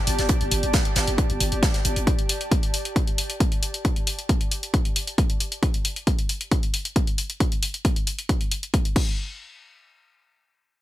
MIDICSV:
0, 0, Header, 1, 4, 480
1, 0, Start_track
1, 0, Tempo, 444444
1, 316, Time_signature, 4, 2, 24, 8
1, 11682, End_track
2, 0, Start_track
2, 0, Title_t, "Analog synth pad"
2, 0, Program_c, 0, 89
2, 0, Note_on_c, 0, 67, 80
2, 0, Note_on_c, 0, 74, 80
2, 0, Note_on_c, 0, 81, 81
2, 6076, Note_off_c, 0, 67, 0
2, 6076, Note_off_c, 0, 74, 0
2, 6077, Note_off_c, 0, 81, 0
2, 11682, End_track
3, 0, Start_track
3, 0, Title_t, "808-style bass"
3, 0, Program_c, 1, 38
3, 76, Note_on_c, 1, 31, 92
3, 194, Note_off_c, 1, 31, 0
3, 200, Note_on_c, 1, 31, 78
3, 314, Note_off_c, 1, 31, 0
3, 440, Note_on_c, 1, 31, 77
3, 549, Note_off_c, 1, 31, 0
3, 556, Note_on_c, 1, 31, 99
3, 674, Note_off_c, 1, 31, 0
3, 680, Note_on_c, 1, 31, 81
3, 794, Note_off_c, 1, 31, 0
3, 1036, Note_on_c, 1, 31, 100
3, 1153, Note_off_c, 1, 31, 0
3, 1160, Note_on_c, 1, 31, 80
3, 1274, Note_off_c, 1, 31, 0
3, 1400, Note_on_c, 1, 31, 76
3, 1510, Note_off_c, 1, 31, 0
3, 1517, Note_on_c, 1, 31, 100
3, 1634, Note_off_c, 1, 31, 0
3, 1640, Note_on_c, 1, 31, 83
3, 1754, Note_off_c, 1, 31, 0
3, 1996, Note_on_c, 1, 31, 89
3, 2113, Note_off_c, 1, 31, 0
3, 2120, Note_on_c, 1, 31, 77
3, 2234, Note_off_c, 1, 31, 0
3, 11682, End_track
4, 0, Start_track
4, 0, Title_t, "Drums"
4, 76, Note_on_c, 9, 46, 112
4, 80, Note_on_c, 9, 42, 70
4, 184, Note_off_c, 9, 46, 0
4, 188, Note_off_c, 9, 42, 0
4, 200, Note_on_c, 9, 42, 54
4, 201, Note_on_c, 9, 38, 51
4, 308, Note_off_c, 9, 42, 0
4, 309, Note_off_c, 9, 38, 0
4, 311, Note_on_c, 9, 42, 98
4, 316, Note_on_c, 9, 36, 126
4, 317, Note_off_c, 9, 42, 0
4, 317, Note_on_c, 9, 42, 75
4, 424, Note_off_c, 9, 36, 0
4, 425, Note_off_c, 9, 42, 0
4, 440, Note_on_c, 9, 42, 51
4, 548, Note_off_c, 9, 42, 0
4, 554, Note_on_c, 9, 42, 73
4, 556, Note_on_c, 9, 46, 110
4, 662, Note_off_c, 9, 42, 0
4, 664, Note_off_c, 9, 46, 0
4, 680, Note_on_c, 9, 42, 48
4, 788, Note_off_c, 9, 42, 0
4, 793, Note_on_c, 9, 42, 93
4, 796, Note_on_c, 9, 36, 119
4, 797, Note_off_c, 9, 42, 0
4, 797, Note_on_c, 9, 42, 72
4, 799, Note_on_c, 9, 38, 114
4, 904, Note_off_c, 9, 36, 0
4, 905, Note_off_c, 9, 42, 0
4, 907, Note_off_c, 9, 38, 0
4, 920, Note_on_c, 9, 42, 48
4, 1028, Note_off_c, 9, 42, 0
4, 1032, Note_on_c, 9, 42, 78
4, 1037, Note_on_c, 9, 46, 105
4, 1041, Note_on_c, 9, 38, 94
4, 1140, Note_off_c, 9, 42, 0
4, 1145, Note_off_c, 9, 46, 0
4, 1149, Note_off_c, 9, 38, 0
4, 1161, Note_on_c, 9, 42, 50
4, 1269, Note_off_c, 9, 42, 0
4, 1276, Note_on_c, 9, 36, 127
4, 1277, Note_on_c, 9, 42, 76
4, 1282, Note_off_c, 9, 42, 0
4, 1282, Note_on_c, 9, 42, 54
4, 1384, Note_off_c, 9, 36, 0
4, 1390, Note_off_c, 9, 42, 0
4, 1401, Note_on_c, 9, 42, 51
4, 1509, Note_off_c, 9, 42, 0
4, 1517, Note_on_c, 9, 42, 70
4, 1517, Note_on_c, 9, 46, 110
4, 1625, Note_off_c, 9, 42, 0
4, 1625, Note_off_c, 9, 46, 0
4, 1641, Note_on_c, 9, 42, 50
4, 1749, Note_off_c, 9, 42, 0
4, 1756, Note_on_c, 9, 36, 122
4, 1757, Note_on_c, 9, 38, 110
4, 1757, Note_on_c, 9, 42, 75
4, 1760, Note_off_c, 9, 42, 0
4, 1760, Note_on_c, 9, 42, 80
4, 1864, Note_off_c, 9, 36, 0
4, 1865, Note_off_c, 9, 38, 0
4, 1868, Note_off_c, 9, 42, 0
4, 1876, Note_on_c, 9, 38, 46
4, 1881, Note_on_c, 9, 42, 49
4, 1984, Note_off_c, 9, 38, 0
4, 1989, Note_off_c, 9, 42, 0
4, 1997, Note_on_c, 9, 46, 109
4, 1998, Note_on_c, 9, 42, 67
4, 2105, Note_off_c, 9, 46, 0
4, 2106, Note_off_c, 9, 42, 0
4, 2121, Note_on_c, 9, 42, 52
4, 2133, Note_off_c, 9, 42, 0
4, 2133, Note_on_c, 9, 42, 42
4, 2236, Note_on_c, 9, 36, 114
4, 2237, Note_off_c, 9, 42, 0
4, 2237, Note_on_c, 9, 42, 70
4, 2344, Note_off_c, 9, 36, 0
4, 2345, Note_off_c, 9, 42, 0
4, 2361, Note_on_c, 9, 42, 47
4, 2469, Note_off_c, 9, 42, 0
4, 2477, Note_on_c, 9, 46, 108
4, 2585, Note_off_c, 9, 46, 0
4, 2601, Note_on_c, 9, 42, 47
4, 2709, Note_off_c, 9, 42, 0
4, 2716, Note_on_c, 9, 36, 111
4, 2717, Note_on_c, 9, 42, 75
4, 2824, Note_off_c, 9, 36, 0
4, 2825, Note_off_c, 9, 42, 0
4, 2841, Note_on_c, 9, 42, 50
4, 2949, Note_off_c, 9, 42, 0
4, 2957, Note_on_c, 9, 46, 98
4, 3065, Note_off_c, 9, 46, 0
4, 3081, Note_on_c, 9, 42, 49
4, 3189, Note_off_c, 9, 42, 0
4, 3196, Note_on_c, 9, 36, 117
4, 3197, Note_on_c, 9, 42, 70
4, 3304, Note_off_c, 9, 36, 0
4, 3305, Note_off_c, 9, 42, 0
4, 3321, Note_on_c, 9, 42, 49
4, 3429, Note_off_c, 9, 42, 0
4, 3436, Note_on_c, 9, 46, 103
4, 3544, Note_off_c, 9, 46, 0
4, 3560, Note_on_c, 9, 42, 53
4, 3668, Note_off_c, 9, 42, 0
4, 3676, Note_on_c, 9, 36, 124
4, 3676, Note_on_c, 9, 42, 77
4, 3784, Note_off_c, 9, 36, 0
4, 3784, Note_off_c, 9, 42, 0
4, 3800, Note_on_c, 9, 42, 49
4, 3908, Note_off_c, 9, 42, 0
4, 3916, Note_on_c, 9, 46, 110
4, 4024, Note_off_c, 9, 46, 0
4, 4040, Note_on_c, 9, 42, 51
4, 4148, Note_off_c, 9, 42, 0
4, 4156, Note_on_c, 9, 36, 112
4, 4156, Note_on_c, 9, 42, 69
4, 4264, Note_off_c, 9, 36, 0
4, 4264, Note_off_c, 9, 42, 0
4, 4280, Note_on_c, 9, 42, 48
4, 4388, Note_off_c, 9, 42, 0
4, 4396, Note_on_c, 9, 46, 104
4, 4504, Note_off_c, 9, 46, 0
4, 4520, Note_on_c, 9, 42, 44
4, 4628, Note_off_c, 9, 42, 0
4, 4636, Note_on_c, 9, 36, 110
4, 4636, Note_on_c, 9, 42, 70
4, 4744, Note_off_c, 9, 36, 0
4, 4744, Note_off_c, 9, 42, 0
4, 4760, Note_on_c, 9, 42, 49
4, 4868, Note_off_c, 9, 42, 0
4, 4876, Note_on_c, 9, 46, 99
4, 4984, Note_off_c, 9, 46, 0
4, 5000, Note_on_c, 9, 42, 51
4, 5108, Note_off_c, 9, 42, 0
4, 5116, Note_on_c, 9, 36, 114
4, 5117, Note_on_c, 9, 42, 75
4, 5224, Note_off_c, 9, 36, 0
4, 5225, Note_off_c, 9, 42, 0
4, 5241, Note_on_c, 9, 42, 48
4, 5349, Note_off_c, 9, 42, 0
4, 5356, Note_on_c, 9, 46, 101
4, 5464, Note_off_c, 9, 46, 0
4, 5480, Note_on_c, 9, 42, 50
4, 5588, Note_off_c, 9, 42, 0
4, 5596, Note_on_c, 9, 36, 114
4, 5596, Note_on_c, 9, 42, 77
4, 5704, Note_off_c, 9, 36, 0
4, 5704, Note_off_c, 9, 42, 0
4, 5720, Note_on_c, 9, 42, 49
4, 5828, Note_off_c, 9, 42, 0
4, 5837, Note_on_c, 9, 46, 99
4, 5945, Note_off_c, 9, 46, 0
4, 5960, Note_on_c, 9, 42, 50
4, 6068, Note_off_c, 9, 42, 0
4, 6076, Note_on_c, 9, 36, 111
4, 6076, Note_on_c, 9, 42, 70
4, 6184, Note_off_c, 9, 36, 0
4, 6184, Note_off_c, 9, 42, 0
4, 6200, Note_on_c, 9, 42, 52
4, 6308, Note_off_c, 9, 42, 0
4, 6316, Note_on_c, 9, 46, 99
4, 6424, Note_off_c, 9, 46, 0
4, 6440, Note_on_c, 9, 42, 46
4, 6548, Note_off_c, 9, 42, 0
4, 6556, Note_on_c, 9, 36, 115
4, 6556, Note_on_c, 9, 42, 72
4, 6664, Note_off_c, 9, 36, 0
4, 6664, Note_off_c, 9, 42, 0
4, 6680, Note_on_c, 9, 42, 50
4, 6788, Note_off_c, 9, 42, 0
4, 6796, Note_on_c, 9, 46, 94
4, 6904, Note_off_c, 9, 46, 0
4, 6920, Note_on_c, 9, 42, 52
4, 7028, Note_off_c, 9, 42, 0
4, 7036, Note_on_c, 9, 36, 117
4, 7036, Note_on_c, 9, 42, 76
4, 7144, Note_off_c, 9, 36, 0
4, 7144, Note_off_c, 9, 42, 0
4, 7160, Note_on_c, 9, 42, 47
4, 7268, Note_off_c, 9, 42, 0
4, 7276, Note_on_c, 9, 46, 93
4, 7384, Note_off_c, 9, 46, 0
4, 7400, Note_on_c, 9, 42, 53
4, 7508, Note_off_c, 9, 42, 0
4, 7516, Note_on_c, 9, 36, 114
4, 7516, Note_on_c, 9, 42, 75
4, 7624, Note_off_c, 9, 36, 0
4, 7624, Note_off_c, 9, 42, 0
4, 7640, Note_on_c, 9, 42, 49
4, 7748, Note_off_c, 9, 42, 0
4, 7756, Note_on_c, 9, 46, 99
4, 7864, Note_off_c, 9, 46, 0
4, 7880, Note_on_c, 9, 42, 52
4, 7988, Note_off_c, 9, 42, 0
4, 7996, Note_on_c, 9, 36, 107
4, 7996, Note_on_c, 9, 42, 70
4, 8104, Note_off_c, 9, 36, 0
4, 8104, Note_off_c, 9, 42, 0
4, 8120, Note_on_c, 9, 42, 51
4, 8228, Note_off_c, 9, 42, 0
4, 8236, Note_on_c, 9, 46, 99
4, 8344, Note_off_c, 9, 46, 0
4, 8360, Note_on_c, 9, 42, 48
4, 8468, Note_off_c, 9, 42, 0
4, 8476, Note_on_c, 9, 36, 110
4, 8476, Note_on_c, 9, 42, 76
4, 8584, Note_off_c, 9, 36, 0
4, 8584, Note_off_c, 9, 42, 0
4, 8600, Note_on_c, 9, 42, 52
4, 8708, Note_off_c, 9, 42, 0
4, 8716, Note_on_c, 9, 46, 99
4, 8824, Note_off_c, 9, 46, 0
4, 8840, Note_on_c, 9, 42, 52
4, 8948, Note_off_c, 9, 42, 0
4, 8956, Note_on_c, 9, 36, 113
4, 8956, Note_on_c, 9, 42, 79
4, 9064, Note_off_c, 9, 36, 0
4, 9064, Note_off_c, 9, 42, 0
4, 9080, Note_on_c, 9, 42, 52
4, 9188, Note_off_c, 9, 42, 0
4, 9196, Note_on_c, 9, 46, 101
4, 9304, Note_off_c, 9, 46, 0
4, 9320, Note_on_c, 9, 42, 52
4, 9428, Note_off_c, 9, 42, 0
4, 9436, Note_on_c, 9, 36, 110
4, 9436, Note_on_c, 9, 42, 79
4, 9544, Note_off_c, 9, 36, 0
4, 9544, Note_off_c, 9, 42, 0
4, 9560, Note_on_c, 9, 42, 51
4, 9668, Note_off_c, 9, 42, 0
4, 9676, Note_on_c, 9, 36, 109
4, 9676, Note_on_c, 9, 49, 86
4, 9784, Note_off_c, 9, 36, 0
4, 9784, Note_off_c, 9, 49, 0
4, 11682, End_track
0, 0, End_of_file